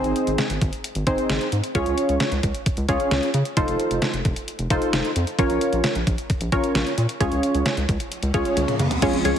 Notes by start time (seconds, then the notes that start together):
Already playing: C4 D#4 G#4 C5
0.04 G#1, closed hi-hat
0.16 closed hi-hat
0.27 G#1, closed hi-hat
0.38 snare, closed hi-hat
0.50 G#1, closed hi-hat
0.61 G#1, kick, closed hi-hat
0.73 closed hi-hat
0.84 closed hi-hat
0.95 G#1, closed hi-hat
1.07 G#1 C4 D#4 G#4 C5, kick, closed hi-hat
1.18 closed hi-hat
1.30 G#1, snare, closed hi-hat
1.41 closed hi-hat
1.52 G#2, closed hi-hat
1.64 closed hi-hat
1.75 C#2 C#4 F4 G#4 C#5, kick, closed hi-hat
1.86 C#2, closed hi-hat
1.98 closed hi-hat
2.09 C#2, closed hi-hat
2.20 snare, closed hi-hat
2.32 C#2, closed hi-hat
2.43 C#2, kick, closed hi-hat
2.55 closed hi-hat
2.66 kick, closed hi-hat
2.77 C#2, closed hi-hat
2.89 C#2 C#4 F4 G#4 C#5, kick, closed hi-hat
3.00 closed hi-hat
3.11 C#2, snare, closed hi-hat
3.23 closed hi-hat
3.34 C#3, closed hi-hat
3.45 closed hi-hat
3.57 F1 D#4 F4 A4 C5, kick, closed hi-hat
3.68 F1, closed hi-hat
3.80 closed hi-hat
3.91 F1, closed hi-hat
4.02 snare, closed hi-hat
4.14 F1, closed hi-hat
4.25 F1, kick, closed hi-hat
4.36 closed hi-hat
4.48 closed hi-hat
4.59 F1, closed hi-hat
4.70 F1 D#4 F4 A4 C5, kick, closed hi-hat
4.82 closed hi-hat
4.93 F1, snare, closed hi-hat
5.05 closed hi-hat
5.16 F2, closed hi-hat
5.27 closed hi-hat
5.39 A#1 C#4 F4 A#4 C#5, kick, closed hi-hat
5.50 A#1, closed hi-hat
5.61 closed hi-hat
5.73 A#1, closed hi-hat
5.84 snare, closed hi-hat
5.95 A#1, closed hi-hat
6.07 A#1, kick, closed hi-hat
6.18 closed hi-hat
6.30 kick, closed hi-hat
6.41 A#1, closed hi-hat
6.52 A#1 C#4 F4 A#4 C#5, kick, closed hi-hat
6.64 closed hi-hat
6.75 A#1, snare, closed hi-hat
6.87 closed hi-hat
6.98 A#2, closed hi-hat
7.09 closed hi-hat
7.20 C#2 C#4 F4 G#4 C#5, kick, closed hi-hat, riser
7.32 C#2, closed hi-hat
7.43 closed hi-hat
7.55 C#2, closed hi-hat
7.66 snare, closed hi-hat
7.77 C#2, closed hi-hat
7.89 C#2, kick, closed hi-hat
8.00 closed hi-hat
8.12 closed hi-hat
8.23 C#2, closed hi-hat
8.34 C#2 C#4 F4 G#4 C#5, kick, closed hi-hat
8.45 closed hi-hat
8.57 C#2, closed hi-hat, high tom
8.68 closed hi-hat, mid tom
8.79 C#3, closed hi-hat, mid tom
8.91 closed hi-hat, floor tom
9.02 C#2 C#3 F3 G#3 C#4 F4 G#4 C#5, kick, closed hi-hat, crash
9.13 C4, closed hi-hat
9.25 C#2 C#4 F4 G#4 C#5, closed hi-hat